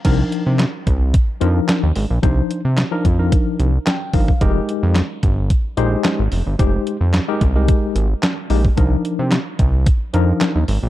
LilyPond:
<<
  \new Staff \with { instrumentName = "Tine electric piano" } { \time 4/4 \key c \minor \tempo 4 = 110 << { r1 | r2. g''8 f''8 | r1 | r1 |
r1 | } \\ { <f d' ees' bes'>4 r4. <f d' ees' bes'>8. r8. | <f d' ees' c''>8. r8 <f d' ees' bes'>16 r16 <f d' ees' bes'>4 r8. <f d' ees' bes'>16 r16 | <aes ees' g' bes'>4 r4. <aes ees' g' c''>8. r8. | <aes ees' g' c''>8. r8 <aes ees' g' bes'>16 r16 <aes ees' g' bes'>4 r8. <aes ees' g' bes'>16 r16 |
<f d' ees' bes'>4 r4. <f d' ees' bes'>8. r8. | } >> }
  \new Staff \with { instrumentName = "Analog synth bass" } { \clef bass \time 4/4 \key c \minor c,8 r16 c8 r16 c,8. r16 f,8 r16 ees,16 aes,,16 bes,,16 | c,8 r16 c8 r16 f,8. r16 c,8 r8 g,,8 | f,,8 r16 f,8 r16 g,,8. r16 bes,,8 r16 aes,,16 f,,16 g,,16 | f,,8 r16 f,8 r16 c,8. r16 aes,,8 r8 bes,,8 |
c,8 r16 c8 r16 c,8. r16 f,8 r16 ees,16 aes,,16 bes,,16 | }
  \new DrumStaff \with { instrumentName = "Drums" } \drummode { \time 4/4 <cymc hh bd>8 hh8 <hc hh sn>8 <hh bd>8 <hh bd>8 hh8 <hc hh sn>8 hho8 | <hh bd>8 hh8 <hc hh sn>8 <hh bd>8 <hh bd>8 hh8 <hc hh sn>8 <hho bd>16 bd16 | <hh bd>8 hh8 <hc hh sn>8 <hh bd>8 <hh bd>8 hh8 <hc hh sn>8 hho8 | <hh bd>8 hh8 <hc hh sn>8 <hh bd>8 <hh bd>8 hh8 <hc hh sn>8 hho16 bd16 |
<hh bd>8 hh8 <hc hh sn>8 <hh bd>8 <hh bd>8 hh8 <hc hh sn>8 hho8 | }
>>